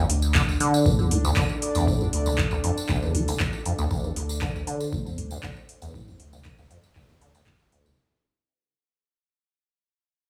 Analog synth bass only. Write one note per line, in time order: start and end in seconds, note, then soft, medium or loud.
0.10 0.42 D2 loud
0.48 0.57 D2 medium
0.86 1.04 C2 loud
1.11 1.30 D2 medium
1.37 1.46 D2 medium
1.75 1.84 D2 medium
2.13 2.45 D2 loud
2.52 2.60 D2 medium
2.89 3.08 C2 loud
3.15 3.33 D2 loud
3.40 3.50 D2 medium
3.79 3.87 D2 medium
4.16 4.49 D2 loud
4.55 4.64 D2 medium
4.93 5.11 C2 loud
5.18 5.36 D2 medium
5.43 5.53 D2 medium
5.82 5.91 D2 medium
6.20 6.52 D2 loud
6.58 6.67 D2 medium
6.96 7.14 C2 loud
7.21 7.40 D2 medium
7.47 7.56 D2 medium
7.86 7.94 D2 medium